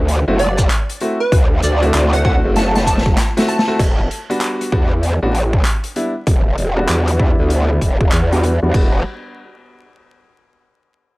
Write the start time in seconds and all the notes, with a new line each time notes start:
Already playing: D2
0.08 closed hi-hat
0.28 F#1 A3 C4 E4 F#4
0.39 D5, closed hi-hat
0.58 kick, shaker
0.70 clap, closed hi-hat
0.89 closed hi-hat
1.00 A3 C4 E4 F#4, closed hi-hat
1.20 B4
1.32 D2, kick, closed hi-hat
1.62 D2 D5, closed hi-hat, shaker
1.82 A3 C4 E4 F#4, closed hi-hat
1.94 D2, clap, closed hi-hat
2.13 F#5, cross-stick, closed hi-hat
2.25 A3 C4 E4 F#4 F#5, kick
2.44 F#1
2.56 A5, snare, closed hi-hat
2.75 A5, snare, closed hi-hat
2.86 F1 A5, kick, closed hi-hat, shaker
2.98 snare
3.06 F#1, kick
3.17 snare, clap, closed hi-hat
3.37 A3 C4 E4 F#4, snare, closed hi-hat
3.48 A5, closed hi-hat
3.59 snare
3.68 A3 C4 E4 F#4
3.79 E1, kick, closed hi-hat, crash
4.11 closed hi-hat
4.30 G3 B3 D4 F#4, closed hi-hat
4.41 clap, closed hi-hat
4.61 cross-stick, closed hi-hat
4.72 E2 G3 B3 D4 F#4, kick
5.03 closed hi-hat
5.23 A1 G3 B3 D4 F#4
5.35 closed hi-hat
5.53 kick
5.65 clap, closed hi-hat
5.84 closed hi-hat
5.96 G3 B3 D4 E4, closed hi-hat
6.27 E1, kick, closed hi-hat
6.58 E1, closed hi-hat
6.77 G3 B3 D4 F#4
6.88 E2, clap, closed hi-hat
7.08 cross-stick, closed hi-hat
7.20 G3 B3 D4 E4, kick
7.39 D2
7.50 closed hi-hat
7.81 E1, kick, closed hi-hat
8.01 kick
8.12 E2, clap, closed hi-hat
8.31 G3 B3 D4 F#4, closed hi-hat
8.43 cross-stick, closed hi-hat
8.62 E2 G3 B3 D4 F#4
8.74 E1 G3 B3 D4 F#4, kick, crash